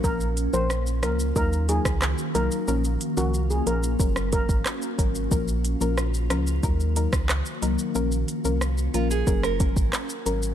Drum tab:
HH |--x---x---x---x-|--x---x---x---x-|--x---x---x---x-|--x---x---x---x-|
SH |xxxxxxxxxxxxxxxx|xxxxxxxxxxxxxxxx|xxxxxxxxxxxxxxxx|xxxxxxxxxxxxxxxx|
CP |------------x---|------------x---|------------x---|------------x---|
SD |----r-r----rr---|---------r--r---|----r-r----rr---|----r----r--r---|
BD |o-------o--o----|--------o-oo--o-|o-------o--o----|--------o-oo----|